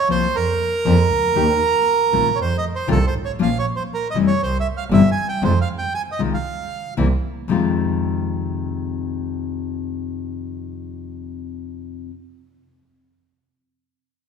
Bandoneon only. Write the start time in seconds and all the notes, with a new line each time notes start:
0.11 C5
0.36 A#4
2.36 C#5
2.42 C5
2.58 D#5
2.76 C5
2.92 A4
3.07 C5
3.25 C#5
3.42 F5
3.59 C#5
3.76 C5
3.94 A#4
4.11 D#5
4.27 C#5
4.43 C5
4.60 E5
4.77 F5
4.93 E5
5.12 G#5
5.29 G5
5.44 C5
5.61 F5
5.78 G5
5.94 G#5
6.12 D#5
6.34 F5